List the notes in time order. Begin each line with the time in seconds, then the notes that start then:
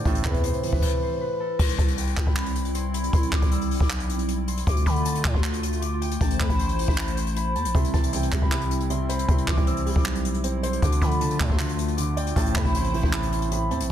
Already playing: G4 C5 D5
0.05 A1 A2 A4, kick, closed hi-hat
0.15 closed hi-hat
0.25 E2 C3 B4, kick, clap
0.34 kick, closed hi-hat
0.44 A2 C5, closed hi-hat
0.53 closed hi-hat
0.63 E3, open hi-hat
0.73 A1 B4, kick
0.82 A4, kick, crash
1.02 C5
1.21 B4
1.40 A4
1.59 C2 G3 C4 E4 C6, kick, crash
1.69 closed hi-hat
1.78 C2 A5, kick, closed hi-hat
1.88 closed hi-hat
1.98 G5, closed hi-hat
2.07 closed hi-hat
2.17 C2, kick, clap, closed hi-hat
2.27 C2 B5, kick
2.36 clap, closed hi-hat
2.46 closed hi-hat
2.55 closed hi-hat
2.65 closed hi-hat
2.75 C6, closed hi-hat
2.94 B5, closed hi-hat
3.04 closed hi-hat
3.13 C2 C6, kick, closed hi-hat
3.23 closed hi-hat
3.32 C2 D6, kick, clap, closed hi-hat
3.42 C2, kick, closed hi-hat
3.51 E6, closed hi-hat
3.61 closed hi-hat
3.71 open hi-hat
3.80 B1 D6, kick
3.90 clap, closed hi-hat
4.00 closed hi-hat
4.09 closed hi-hat
4.19 closed hi-hat
4.28 closed hi-hat
4.48 C6, closed hi-hat
4.57 closed hi-hat
4.67 D2 D3 A3 F4 D6, kick, closed hi-hat
4.77 closed hi-hat
4.86 D3 B5, kick, closed hi-hat
4.96 closed hi-hat
5.05 A5, closed hi-hat
5.15 closed hi-hat
5.25 A2, kick, clap
5.34 D2 C6, kick
5.44 clap, closed hi-hat
5.54 closed hi-hat
5.63 closed hi-hat
5.73 closed hi-hat
5.81 D6, closed hi-hat
6.02 G5, closed hi-hat
6.11 closed hi-hat
6.21 A1 A3 E4 C5 A5, kick, closed hi-hat
6.30 closed hi-hat
6.40 E2 B5, kick, clap
6.50 A1, kick, closed hi-hat
6.59 C6, closed hi-hat
6.69 closed hi-hat
6.79 open hi-hat
6.88 A1 B5, kick
6.98 A5, clap, closed hi-hat
7.07 closed hi-hat
7.17 C6, closed hi-hat
7.27 closed hi-hat
7.36 B5, closed hi-hat
7.55 E2 A5, closed hi-hat
7.65 A1, closed hi-hat
7.74 C2 C3 G3 C4 C6, kick, closed hi-hat
7.84 closed hi-hat
7.94 C2 E3 A5, kick, closed hi-hat
8.04 closed hi-hat
8.13 C3 G5, closed hi-hat
8.23 closed hi-hat
8.32 C2 G3, kick, clap, closed hi-hat
8.42 C2 B5, kick
8.52 C3, clap, closed hi-hat
8.61 closed hi-hat
8.71 closed hi-hat
8.80 closed hi-hat
8.90 C3 C6, closed hi-hat
9.09 C5 B5, closed hi-hat
9.19 closed hi-hat
9.28 C2 C3 C6, kick, closed hi-hat
9.38 closed hi-hat
9.48 C2 E3 D6, kick, clap, closed hi-hat
9.57 C2, kick, closed hi-hat
9.67 C4 E6, closed hi-hat
9.77 closed hi-hat
9.86 G3, open hi-hat
9.96 B1 D6, kick
10.06 clap
10.15 closed hi-hat
10.25 closed hi-hat
10.34 closed hi-hat
10.44 C4, closed hi-hat
10.63 C5 C6, closed hi-hat
10.73 closed hi-hat
10.82 D2 D3 A3 F4 D6, kick, closed hi-hat
10.92 closed hi-hat
11.02 D3 F3 B5, kick, closed hi-hat
11.11 closed hi-hat
11.21 D3 A5, closed hi-hat
11.31 closed hi-hat
11.40 A2 A3, kick, clap, closed hi-hat
11.49 D2 C6, kick
11.59 D3, clap, closed hi-hat
11.69 closed hi-hat
11.79 closed hi-hat
11.88 closed hi-hat
11.97 D3 D6, closed hi-hat
12.17 D5 G5, closed hi-hat
12.27 closed hi-hat
12.36 A1 A2 A3 E4 C5 A5, kick, closed hi-hat
12.46 closed hi-hat
12.55 E2 C3 B5, kick, clap
12.65 A1, kick, closed hi-hat
12.74 A2 C6, closed hi-hat
12.84 closed hi-hat
12.94 E3, open hi-hat
13.03 A1 B5, kick
13.13 A2 A5, clap, closed hi-hat
13.23 closed hi-hat
13.32 C6, closed hi-hat
13.42 closed hi-hat
13.51 A2 B5, closed hi-hat
13.71 E2 C4 A5, closed hi-hat
13.80 A1, closed hi-hat